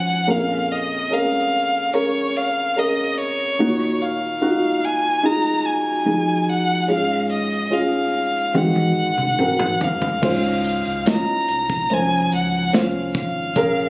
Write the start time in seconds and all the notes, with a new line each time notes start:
Already playing: C#2 G#2 F3 C#4 F4 B4 C5 F#5
0.27 A#1 F2 C#4 G#4 A#4 F5
0.72 D#5
1.10 C#4 G#4 A#4 F5
1.93 C#4 G#4 A#4 C#5
2.37 F5
2.76 C#4 G#4 A#4 D#5
3.20 C#5
3.59 D#2 A#2 D#4 F4 F#4
4.02 F5
4.41 D#4 F4 F#4
4.85 G#5
5.23 D#4 F4 G#4 A#5
5.66 G#5
6.05 F3 D#4 G#4
6.49 F#5
6.88 G#2 G#3 C#4 F4 G#4 F5
7.32 D#5
7.71 C#4 F4 G#4 F5
8.54 G#2 D#3 C4 F#4 G#4 F#5, high tom
8.76 high tom
9.18 mid tom
9.39 C4 F#4 A#4, mid tom
9.60 mid tom
9.81 F5, floor tom
10.02 floor tom
10.22 C#2 G#2 C#4 F4 C5, kick, crash
10.65 closed hi-hat
10.85 C#2, closed hi-hat
11.06 C#4 E4 D#5, snare, closed hi-hat
11.10 F4 A#5
11.48 C2, closed hi-hat
11.70 kick
11.90 F3 C#4 C5 G#5, closed hi-hat
12.32 C#2 F#5, closed hi-hat
12.73 C2 C#4 F4 C5 F5, snare, closed hi-hat
13.15 G#1 F5, kick, closed hi-hat
13.56 A#1 C#4 G#4 A#4, kick, closed hi-hat